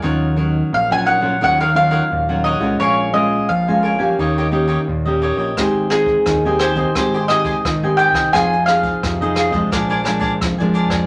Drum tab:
HH |----------------|----------------|x-x-x-xxx-xxx-x-|xxxxxxxxxxx-xxx-|
SD |----------------|----------------|r-r-r-r-r-r-r--r|r-r-r-r-r-r-r--r|
BD |----------------|----------------|o--oo--oo--oo--o|o--oo--oo--oo--o|